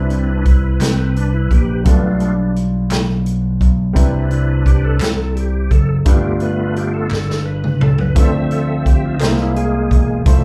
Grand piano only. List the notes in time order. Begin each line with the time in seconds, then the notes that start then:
Already playing: C3 G3 C4 E4 B4
1.84 B2 G3 D4 F4 A4
1.93 B4
3.93 C3 G3 C4 E4 B4
6.05 G2 G3 D4 F4 B4
8.15 D3 A3 D4 F4 B4
8.23 C5
9.20 C3 A#3 D#4 G#4 C5
9.27 E4
10.26 A3 E4 F4 C5